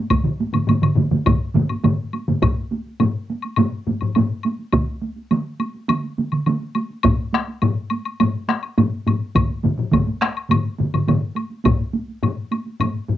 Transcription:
0.10 taiko medium
0.10 taiko low-mid medium
0.10 taiko mid medium
0.10 taiko high medium
0.10 high woodblock medium
0.23 taiko low-mid medium
0.23 taiko mid medium
0.40 taiko high medium
0.53 taiko low-mid medium
0.53 taiko mid medium
0.53 taiko high medium
0.53 high woodblock soft
0.68 taiko low-mid medium
0.68 taiko mid medium
0.68 taiko high medium
0.68 high woodblock soft
0.82 taiko low-mid medium
0.82 taiko mid medium
0.82 high woodblock soft
0.96 taiko low-mid medium
0.96 taiko mid medium
0.96 taiko high medium
1.11 taiko low-mid medium
1.11 taiko mid medium
1.11 taiko high medium
1.26 taiko loud
1.26 taiko low-mid loud
1.26 taiko mid medium
1.26 taiko high medium
1.26 high woodblock medium
1.55 taiko low-mid loud
1.55 taiko mid loud
1.55 taiko high medium
1.69 taiko high medium
1.69 high woodblock soft
1.84 taiko low-mid loud
1.84 taiko mid loud
1.84 taiko high medium
1.84 high woodblock soft
2.13 taiko high medium
2.13 high woodblock soft
2.28 taiko low-mid medium
2.28 taiko mid medium
2.28 taiko high medium
2.42 taiko loud
2.42 taiko low-mid loud
2.42 taiko high medium
2.42 high woodblock medium
2.57 taiko high soft
2.71 taiko high medium
2.86 taiko high soft
3.00 taiko low-mid loud
3.00 taiko high medium
3.00 high woodblock soft
3.30 taiko high medium
3.42 taiko high soft
3.42 high woodblock soft
3.56 taiko low-mid loud
3.56 taiko high medium
3.56 high woodblock medium
3.73 taiko high soft
3.87 taiko low-mid medium
3.87 taiko high medium
4.01 taiko low-mid medium
4.01 taiko high soft
4.01 high woodblock soft
4.15 taiko low-mid loud
4.15 taiko high medium
4.15 high woodblock soft
4.31 taiko high soft
4.43 taiko high medium
4.43 high woodblock soft
4.59 taiko high soft
4.72 taiko loud
4.72 taiko mid medium
4.72 taiko high medium
4.72 high woodblock medium
5.02 taiko high medium
5.16 taiko high soft
5.31 taiko mid loud
5.31 taiko high medium
5.31 high woodblock soft
5.59 taiko high medium
5.59 high woodblock soft
5.74 taiko high soft
5.89 taiko mid loud
5.89 taiko high medium
5.89 high woodblock medium
6.04 taiko high soft
6.18 taiko mid medium
6.18 taiko high medium
6.32 taiko mid medium
6.32 taiko high soft
6.32 high woodblock soft
6.46 taiko mid loud
6.46 taiko high medium
6.46 high woodblock soft
6.61 taiko high soft
6.75 taiko high medium
6.75 high woodblock soft
6.90 taiko high soft
7.03 taiko loud
7.03 taiko low-mid loud
7.03 taiko high medium
7.03 high woodblock medium
7.19 taiko high soft
7.33 taiko rim medium
7.33 taiko high medium
7.48 taiko high soft
7.62 taiko low-mid loud
7.62 taiko high medium
7.62 high woodblock medium
7.90 taiko high soft
7.90 high woodblock medium
8.05 taiko high soft
8.05 high woodblock soft
8.20 taiko low-mid medium
8.20 taiko high medium
8.20 high woodblock medium
8.34 taiko high soft
8.49 taiko rim medium
8.49 taiko high medium
8.63 taiko high soft
8.63 high woodblock soft
8.78 taiko low-mid loud
8.78 taiko high medium
8.78 high woodblock soft
8.92 taiko high soft
9.07 taiko low-mid medium
9.07 taiko high medium
9.07 high woodblock soft
9.21 taiko high soft
9.35 taiko medium
9.35 taiko low-mid medium
9.35 taiko mid medium
9.35 taiko high medium
9.35 high woodblock medium
9.50 taiko high soft
9.63 taiko low-mid medium
9.63 taiko mid medium
9.63 taiko high medium
9.78 taiko low-mid medium
9.78 taiko mid medium
9.78 taiko high soft
9.92 taiko medium
9.92 taiko low-mid loud
9.92 taiko mid loud
9.92 taiko high medium
9.92 high woodblock soft
10.07 taiko high soft
10.21 taiko rim medium
10.21 taiko high medium
10.21 high woodblock soft
10.37 high woodblock soft
10.50 taiko low-mid medium
10.50 taiko mid medium
10.50 taiko high medium
10.50 high woodblock medium
10.65 taiko high soft
10.79 taiko low-mid medium
10.79 taiko mid medium
10.79 taiko high medium
10.94 taiko low-mid medium
10.94 taiko mid medium
10.94 taiko high soft
10.94 high woodblock soft
11.07 taiko low-mid loud
11.07 taiko mid loud
11.07 taiko high medium
11.07 high woodblock soft
11.35 taiko high medium
11.35 high woodblock soft
11.50 taiko high soft
11.64 taiko loud
11.64 taiko low-mid loud
11.64 taiko high medium
11.64 high woodblock medium
11.79 taiko high soft
11.93 taiko high medium
12.08 taiko high soft
12.22 taiko low-mid loud
12.22 taiko high medium
12.22 high woodblock soft
12.51 taiko high medium
12.51 high woodblock soft
12.66 taiko high soft
12.80 taiko low-mid medium
12.80 taiko high medium
12.80 high woodblock medium
12.95 taiko high soft
13.09 taiko low-mid medium
13.09 taiko high soft

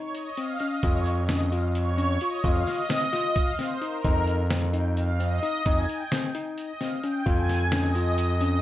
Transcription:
0.00 0.28 D#4 medium
0.00 0.16 C#5 medium
0.15 0.39 D#5 loud
0.15 closed hi-hat medium
0.37 0.56 C4 medium
0.37 0.62 F5 loud
0.37 closed hi-hat medium
0.60 0.79 C#4 medium
0.60 0.85 D#5 medium
0.60 closed hi-hat medium
0.83 2.18 F2 loud
0.83 1.20 F4 medium
0.83 1.05 C#5 medium
0.83 kick loud
0.83 closed hi-hat medium
1.06 closed hi-hat medium
1.29 1.48 C#4 medium
1.29 1.39 D#5 loud
1.29 snare loud
1.29 closed hi-hat medium
1.52 1.89 F4 medium
1.52 1.63 F5 loud
1.52 closed hi-hat medium
1.75 2.18 C#5 loud
1.75 closed hi-hat medium
1.98 2.17 C#4 medium
1.98 closed hi-hat medium
2.21 2.40 F4 medium
2.21 2.45 D#5 loud
2.21 closed hi-hat medium
2.44 2.63 F2 loud
2.44 2.81 F4 medium
2.44 2.68 F5 loud
2.44 kick loud
2.44 closed hi-hat medium
2.67 3.38 D#5 loud
2.67 snare soft
2.67 closed hi-hat medium
2.89 3.08 C4 medium
2.89 snare loud
2.89 closed hi-hat medium
3.13 3.50 F4 medium
3.13 snare soft
3.13 closed hi-hat medium
3.36 3.58 F5 loud
3.36 kick medium
3.36 closed hi-hat medium
3.59 3.77 C4 medium
3.59 3.83 C5 medium
3.59 snare soft
3.59 closed hi-hat medium
3.82 4.00 D#4 medium
3.82 4.25 A#4 medium
3.82 closed hi-hat medium
4.04 5.39 F2 loud
4.04 4.42 D#4 medium
4.04 kick loud
4.04 closed hi-hat medium
4.27 closed hi-hat medium
4.51 4.69 C4 medium
4.51 snare loud
4.51 closed hi-hat medium
4.73 5.10 D#4 medium
4.73 4.84 G5 medium
4.73 closed hi-hat medium
4.97 5.20 F5 medium
4.97 closed hi-hat medium
5.19 5.38 C4 medium
5.19 5.62 D#5 loud
5.19 closed hi-hat medium
5.43 5.61 D#4 medium
5.43 closed hi-hat medium
5.65 5.85 F2 loud
5.65 6.03 D#4 medium
5.65 5.87 G#5 loud
5.65 kick loud
5.65 closed hi-hat medium
5.89 6.10 G5 medium
5.89 closed hi-hat medium
6.12 6.30 C4 medium
6.12 snare loud
6.12 closed hi-hat medium
6.35 6.71 D#4 medium
6.35 closed hi-hat medium
6.57 6.81 D#5 medium
6.57 closed hi-hat medium
6.80 6.99 C4 medium
6.80 6.91 F5 loud
6.80 snare soft
6.80 closed hi-hat medium
7.03 7.22 C#4 medium
7.03 7.27 G5 loud
7.03 closed hi-hat medium
7.26 8.61 F2 loud
7.26 7.63 F4 medium
7.26 7.69 G#5 loud
7.26 kick loud
7.26 closed hi-hat medium
7.49 snare soft
7.49 closed hi-hat medium
7.72 7.91 C#4 medium
7.72 8.62 D#5 medium
7.72 snare loud
7.72 closed hi-hat medium
7.95 8.32 F4 medium
7.95 closed hi-hat medium
8.18 closed hi-hat medium
8.41 8.59 C#4 medium
8.41 closed hi-hat medium

